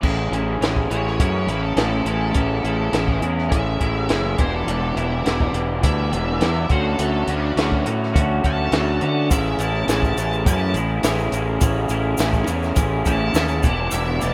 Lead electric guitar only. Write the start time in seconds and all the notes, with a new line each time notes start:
0.91 C#5
1.48 B4
1.63 A4
2.07 A4
3.52 E5
4.39 C5
4.55 A4
4.97 E4
5.85 E5
6.71 C5
6.87 A4
7.31 D4
8.46 A5
9.33 E5
9.60 A5
9.89 A5
10.47 A5
13.08 A5
13.92 E5
14.23 A5